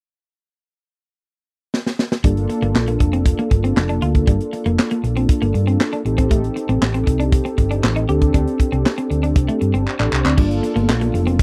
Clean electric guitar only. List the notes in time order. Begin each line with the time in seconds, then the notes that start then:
2.24 G3
2.50 muted clean electric guitar stroke
2.62 A#3
2.88 A#3
3.00 muted clean electric guitar stroke
3.13 C4
3.39 A#3
3.52 muted clean electric guitar stroke
3.64 C4
3.77 muted clean electric guitar stroke
3.89 D4
4.02 F4
4.27 G3
4.53 muted clean electric guitar stroke
4.66 A#3
4.91 A#3
5.04 muted clean electric guitar stroke
5.17 C4
5.42 A#3
5.54 muted clean electric guitar stroke
5.67 C4
5.93 D4
6.06 muted clean electric guitar stroke
6.18 C4
6.31 A3
6.56 muted clean electric guitar stroke
6.69 C4
6.94 C4
7.07 muted clean electric guitar stroke
7.20 D4
7.45 C4
7.58 muted clean electric guitar stroke
7.71 D4
7.83 muted clean electric guitar stroke
7.96 D#4
8.09 G4
8.34 D4
8.60 muted clean electric guitar stroke
8.72 C4
8.98 C4
9.10 muted clean electric guitar stroke
9.23 D4
9.48 A3
9.61 muted clean electric guitar stroke
9.74 C4
9.99 D4
10.12 muted clean electric guitar stroke
10.25 C4
10.37 G3
10.63 muted clean electric guitar stroke
10.76 A#3
11.01 A#3
11.14 muted clean electric guitar stroke
11.27 C4